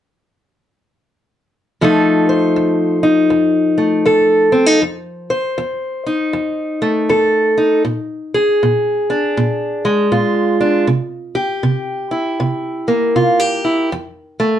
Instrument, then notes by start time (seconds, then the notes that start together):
steel-string acoustic guitar
1.81 F2 F3 A3 D#4 A4
2.29 C5
2.56 F2
3.03 D#4
3.30 F2
3.78 A3
4.06 F2 A4
4.52 C4
4.66 D#4
4.82 F2
5.30 C5
5.58 F2
6.06 D#4
6.33 F2
6.82 A3
7.09 F2 A4
7.58 D#4
7.85 A#2
8.34 G#4
8.63 A#2
9.10 D4
9.37 A#2
9.85 G#3
10.12 A#2 F4
10.61 D4
10.87 C3
11.35 G4
11.63 C3
12.11 E4
12.40 C3
12.88 A#3
13.16 C3 F4
13.40 G4
13.65 E4
13.92 F2
14.40 A3